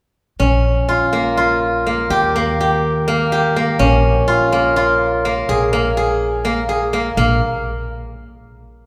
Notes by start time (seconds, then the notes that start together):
0.40 A#1 C#4
0.89 F4
1.13 A#3
1.37 F4
1.86 A#3
2.10 D#2 G4
2.36 A#3
2.61 G4
3.08 A#3
3.32 G4
3.56 A#3
3.79 A#1 C#4
4.28 F4
4.52 A#3
4.76 F4
5.25 A#3
5.49 A#1 G#4
5.73 A#3
5.97 G#4
6.45 A#3
6.69 G#4
6.93 A#3
7.17 A#1 A#3